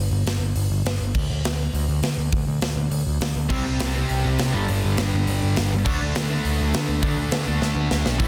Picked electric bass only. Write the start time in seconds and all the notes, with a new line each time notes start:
0.11 G1
0.26 G1
0.40 G1
0.56 G1
0.70 G1
0.85 G1
1.01 G1
1.16 D2
1.30 D2
1.45 D2
1.74 D2
1.88 D2
2.03 D2
2.18 D2
2.33 D2
2.47 D2
2.62 D2
2.76 D2
2.91 D2
3.07 D2
3.21 D2
3.36 D2
3.50 C2
3.66 C2
3.81 C2
4.10 C2
4.25 C2
4.40 C2
4.54 G1
4.69 G1
4.84 G1
4.98 G1
5.14 G1
5.28 G1
5.43 G1
5.59 G1
5.73 G1
5.86 D2
6.01 D2
6.15 D2
6.45 D2
6.61 D2
6.75 D2
6.89 D2
7.04 D2
7.18 D2
7.32 D2
7.48 D2
7.62 D2
7.76 D2
7.91 D2
8.05 B1
8.20 A1